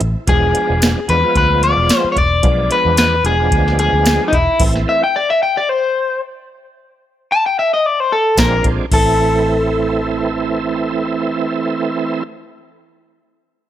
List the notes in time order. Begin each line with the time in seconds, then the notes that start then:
0.01 A1, closed hi-hat
0.27 E1 F3 G#3 B3 D4 G#4, kick, closed hi-hat
0.55 closed hi-hat
0.70 E1
0.82 snare, closed hi-hat, tambourine
1.08 E2 F3 G#3 B3 D4 B4, closed hi-hat
1.23 F3 G#3 B3 F4
1.36 D2 B4, kick, closed hi-hat
1.63 D5, closed hi-hat
1.77 E1
1.89 snare, closed hi-hat, tambourine
2.04 muted fingered electric bass stroke
2.12 C#5
2.16 E1 D5, kick, closed hi-hat
2.43 B1 F3 G#3 B3 D4, kick, closed hi-hat
2.71 B4, closed hi-hat
2.85 E2
2.97 B4, snare, closed hi-hat, tambourine
3.24 E1 F3 G#3 B3 D4 G#4, closed hi-hat
3.39 F3 G#3 B3 D4
3.52 D2, kick, closed hi-hat
3.68 snare
3.79 G#4, closed hi-hat
3.93 D2
4.06 snare, closed hi-hat, tambourine
4.28 D#4
4.33 E1 E4, kick, closed hi-hat
4.59 A1 E3 A3 C4 E4, kick, closed hi-hat, crash
4.75 snare
4.89 E5
5.04 G5
5.16 D5
5.30 E5
5.43 G5
5.57 D5
5.69 C5
7.32 A5
7.46 G5
7.59 E5
7.74 D#5
7.86 D5
8.00 C5
8.12 A4
8.37 A#1 F3 G#3 C4 D4 A#4, kick, snare, closed hi-hat, tambourine
8.64 A#1, kick, closed hi-hat
8.92 A1 E3 A3 C4 E4 A4, kick, crash